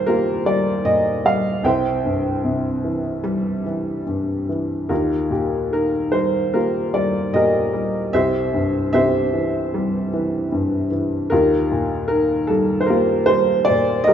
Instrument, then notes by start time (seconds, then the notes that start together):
grand piano
Already playing: D#2 A#2 D#3 G3 F4 G4 A#4 C5
0.07 A#3 F4 G4 A#4
0.45 G3 D5
0.85 A#2 D#5
1.25 G3 F5
1.64 C2 C5 E5 G5
2.05 G2
2.44 C3
2.84 E3
3.24 G3
3.66 E3
4.06 G2
4.49 E3
4.89 D#2 F4 G4 A#4
5.30 A#2 G4
5.72 D#3 A#4
6.12 G3 C5
6.54 A#3 F4 G4 A#4
6.94 G3 D5
7.33 A#2 G4 A#4 D#5
7.73 G3
8.13 C2 G4 C5 E5
8.54 G2
8.93 C3 G4 C5 E5
9.33 E3
9.74 G3
10.14 E3
10.52 G2
10.91 E3
11.30 D#2 F4 G4 A#4
11.71 A#2
12.08 D#3 A#4
12.47 G3 A4
12.81 C5
12.86 A#3 F4 G4 A#4
13.26 G3 C5
13.65 D5
13.69 A#2
14.04 A#4 D#5
14.08 G3 G4